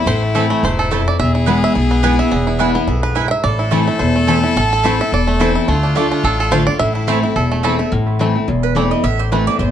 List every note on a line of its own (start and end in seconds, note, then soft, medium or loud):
0.00 0.23 A3 medium
0.00 0.92 E4 medium
0.00 1.16 E4 loud
0.06 0.50 A1 medium
0.06 0.61 A2 loud
0.06 0.22 C5 loud
0.35 0.62 E3 medium
0.35 0.45 A3 medium
0.35 0.62 A3 medium
0.35 0.63 C4 loud
0.35 0.45 E4 medium
0.35 0.63 E4 loud
0.35 0.76 A4 medium
0.35 0.45 C5 loud
0.35 0.46 A5 medium
0.50 0.89 A3 medium
0.63 1.06 E1 medium
0.63 0.90 G#2 medium
0.63 0.91 C5 medium
0.79 1.17 A4 medium
0.91 1.18 F2 medium
0.91 1.01 A3 medium
0.91 1.02 E4 medium
0.91 1.35 E4 medium
0.91 1.02 C5 medium
0.91 1.02 A5 medium
1.08 1.19 D5 medium
1.19 1.62 E1 loud
1.19 1.73 E2 medium
1.19 3.28 G#4 loud
1.19 1.35 E5 loud
1.35 1.63 E4 medium
1.46 1.74 E3 medium
1.46 1.74 G#3 loud
1.46 1.57 B3 medium
1.46 1.88 B3 medium
1.46 1.75 B3 medium
1.46 1.57 E4 loud
1.46 1.75 E4 medium
1.46 1.58 B4 medium
1.46 1.58 G#5 loud
1.64 1.75 E5 loud
1.75 2.19 B1 medium
1.75 2.29 B2 medium
1.75 2.03 E4 medium
1.91 2.29 B3 medium
2.03 2.18 E3 medium
2.03 2.19 G#3 medium
2.03 2.13 B3 medium
2.03 2.19 B3 loud
2.03 2.14 E4 medium
2.03 2.18 E4 loud
2.03 2.19 B4 medium
2.03 2.14 B4 loud
2.03 2.14 G#5 loud
2.19 2.32 B3 soft
2.19 2.31 E4 medium
2.19 2.57 E5 medium
2.31 2.75 E1 medium
2.31 2.85 E2 loud
2.31 2.72 B3 medium
2.47 2.60 E4 medium
2.59 2.75 E3 loud
2.59 2.75 G#3 medium
2.59 2.69 B3 medium
2.59 2.75 B3 medium
2.59 2.70 E4 medium
2.59 2.87 E4 medium
2.59 2.74 E4 loud
2.59 2.70 B4 loud
2.59 2.70 G#5 loud
2.75 3.13 B3 medium
2.75 2.88 B3 soft
2.75 2.87 E4 medium
2.87 3.31 B1 medium
2.87 3.15 F2 medium
2.87 3.03 E4 medium
3.03 3.26 B4 medium
3.15 3.43 G#2 medium
3.15 3.26 B3 medium
3.15 3.26 E4 medium
3.15 3.43 E4 medium
3.15 3.26 B4 medium
3.15 3.26 G#5 medium
3.28 3.44 E5 medium
3.28 3.31 G5 medium
3.44 3.87 A1 medium
3.44 3.98 A2 medium
3.44 5.70 A4 loud
3.44 3.87 D5 loud
3.59 3.86 E4 medium
3.71 3.87 E3 medium
3.71 3.82 A3 medium
3.71 4.15 A3 medium
3.71 3.87 A3 medium
3.71 3.88 C4 medium
3.71 3.82 E4 medium
3.71 3.86 E4 loud
3.71 3.82 C5 medium
3.71 3.82 A5 medium
3.87 4.01 C4 soft
3.87 4.00 E4 medium
3.87 4.26 E4 medium
3.99 4.43 E1 medium
3.99 4.54 E2 medium
3.99 4.14 C5 medium
4.16 5.27 A3 medium
4.27 4.43 E3 medium
4.27 4.38 A3 medium
4.27 4.43 A3 loud
4.27 4.43 C4 medium
4.27 4.38 E4 medium
4.27 4.42 E4 loud
4.27 4.57 A4 medium
4.27 4.38 C5 loud
4.27 4.39 A5 loud
4.43 4.56 C4 soft
4.43 4.56 E4 medium
4.43 4.82 E4 medium
4.56 4.99 A1 medium
4.56 5.10 A2 loud
4.56 4.72 A4 loud
4.73 4.85 A4 medium
4.83 4.99 E3 loud
4.83 4.94 A3 medium
4.83 4.99 A3 loud
4.83 4.99 C4 loud
4.83 4.94 E4 medium
4.83 4.98 E4 loud
4.83 4.94 C5 loud
4.83 4.99 C5 loud
4.83 4.95 A5 medium
4.99 5.12 C4 medium
4.99 5.12 E4 medium
4.99 5.12 E5 loud
5.12 5.55 E1 medium
5.12 5.66 E2 medium
5.12 5.39 D5 loud
5.27 5.68 A3 medium
5.39 5.67 E3 medium
5.39 5.50 A3 medium
5.39 5.67 A3 medium
5.39 5.67 C4 loud
5.39 5.50 E4 loud
5.39 5.68 E4 loud
5.39 5.50 C5 medium
5.39 5.55 C5 medium
5.39 5.51 A5 loud
5.55 5.68 E4 medium
5.68 6.11 D2 loud
5.68 5.94 D3 loud
5.68 5.96 A3 medium
5.68 6.81 F4 loud
5.83 6.10 D4 medium
5.95 6.23 D3 loud
5.95 6.06 A3 medium
5.95 6.23 A3 loud
5.95 7.36 A3 medium
5.95 6.23 D4 medium
5.95 6.06 F4 medium
5.95 6.24 F4 loud
5.95 6.07 D5 medium
5.95 6.07 A5 loud
6.12 6.50 D4 medium
6.23 6.67 A1 medium
6.23 6.77 A2 medium
6.23 6.39 A4 medium
6.40 6.53 A4 medium
6.51 6.67 D3 medium
6.51 6.62 A3 medium
6.51 6.67 A3 medium
6.51 6.67 D4 medium
6.51 6.62 F4 medium
6.51 6.65 F4 medium
6.51 6.66 C5 loud
6.51 6.62 D5 loud
6.51 6.62 A5 loud
6.67 6.80 D4 soft
6.67 6.79 F4 medium
6.67 6.79 D5 loud
6.79 7.23 A1 loud
6.79 7.33 A2 loud
6.79 7.79 E4 medium
6.79 6.95 E5 loud
6.95 7.22 E4 medium
7.07 7.23 E3 medium
7.07 7.23 A3 loud
7.07 7.18 A3 medium
7.07 7.23 C4 medium
7.07 7.18 E4 loud
7.07 7.21 E4 medium
7.07 7.23 C5 medium
7.07 7.18 C5 loud
7.07 7.19 A5 loud
7.23 7.36 C4 medium
7.23 7.35 E4 medium
7.23 7.62 E4 medium
7.36 7.79 E1 medium
7.36 7.90 E2 medium
7.36 7.63 A4 medium
7.52 7.90 A3 medium
7.63 7.79 E3 medium
7.63 7.74 A3 medium
7.63 7.79 A3 medium
7.63 7.79 C4 loud
7.63 7.74 E4 medium
7.63 7.77 E4 loud
7.63 7.92 A4 medium
7.63 7.74 C5 loud
7.63 7.74 A5 medium
7.79 7.92 C4 soft
7.79 7.91 E4 medium
7.79 7.92 E4 medium
7.92 8.35 A1 medium
7.92 8.45 A2 loud
8.19 8.35 E3 loud
8.19 8.35 A3 medium
8.19 8.27 A3 medium
8.19 8.35 C4 medium
8.19 8.23 E4 medium
8.19 8.34 E4 medium
8.35 8.48 C4 soft
8.35 8.48 E4 medium
8.48 8.91 E1 medium
8.48 9.01 E2 medium
8.63 8.76 B4 medium
8.75 8.90 E3 medium
8.75 8.91 A3 loud
8.75 8.83 A3 medium
8.75 8.91 C4 loud
8.75 8.89 E4 loud
8.75 8.79 E4 medium
8.75 8.91 D5 medium
8.91 9.04 C4 soft
8.91 9.03 E4 medium
8.91 9.03 D#5 medium
9.04 9.46 A1 loud
9.04 9.58 A2 medium
9.04 9.19 E5 loud
9.19 9.32 C5 medium
9.32 9.47 E3 medium
9.32 9.39 A3 medium
9.32 9.47 A3 medium
9.32 9.47 C4 loud
9.32 9.35 E4 medium
9.32 9.46 E4 loud
9.32 9.47 B4 medium
9.47 9.60 C4 soft
9.47 9.59 E4 medium
9.47 9.59 D5 loud
9.59 9.71 G#1 medium
9.59 9.71 E2 medium
9.59 9.71 C5 medium